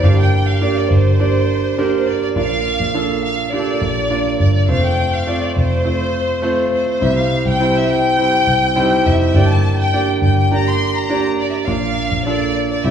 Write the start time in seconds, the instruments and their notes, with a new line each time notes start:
0.03 picked electric bass G1, grand piano G2 A#3 D4 G4 D5, violin section F5
0.20 violin section G5
0.49 violin section F5
0.61 grand piano A#3 D4 G4 D5
0.78 violin section D5
0.91 picked electric bass G1, violin section C5
1.20 grand piano A#3 D4 G4 D5
1.78 grand piano A#3 D4 G4 A#4
2.08 violin section D5
2.23 violin section D5
2.36 picked electric bass A#1, grand piano A#2 A#3 D4 F4 D5, violin section F5
2.80 picked electric bass A#1
2.94 grand piano A#3 D4 F4 A4
3.25 violin section F5
3.53 grand piano A#3 D4 F4 G4, violin section D5
3.60 grand piano A4
3.82 picked electric bass A#1
4.10 grand piano A#3 D4 F4 D5
4.40 picked electric bass G1, violin section D5
4.55 violin section D5
4.68 picked electric bass F1, grand piano A3 C4 F4 C5, violin section F5
4.84 violin section G5
5.13 violin section F5
5.27 grand piano A3 C4 F4 D5
5.42 violin section D5
5.56 picked electric bass F1, violin section C5
5.84 grand piano A3 C4 F4 C5
6.42 grand piano A3 C4 F4 C5
6.74 violin section C5
6.89 violin section C5
7.01 picked electric bass C2, grand piano C3 G3 C4 E4 C5, violin section E5
7.17 violin section F5
7.46 picked electric bass C2, violin section G5
7.60 grand piano G3 C4 E4 C5
7.76 violin section E5
7.90 violin section G5
8.18 grand piano G3 C4 E4 C5
8.47 picked electric bass C2
8.76 grand piano G3 C4 D#4 C5
8.82 grand piano E4
9.06 picked electric bass F1, violin section E5
9.21 violin section E5
9.35 picked electric bass G1, grand piano G2 A#3 D4 G4 D5, violin section G5
9.50 violin section A5
9.79 violin section G5
9.93 grand piano A#3 D4 G4 D5
10.22 picked electric bass G1, violin section G5
10.38 violin section G5
10.51 grand piano A#3 D4 G4 D5, violin section A#5
10.67 violin section C6
10.96 violin section A#5
11.09 grand piano A#3 D4 G4 D5
11.40 violin section D5
11.51 violin section D5 E5
11.67 picked electric bass A#1, grand piano A#2 A#3 D4 F4 D5, violin section F5
12.12 picked electric bass A#1
12.26 grand piano A#3 D4 F4 A4, violin section D5
12.72 violin section D5
12.84 picked electric bass C2, grand piano C3 C4 E4 G4 E5, violin section E5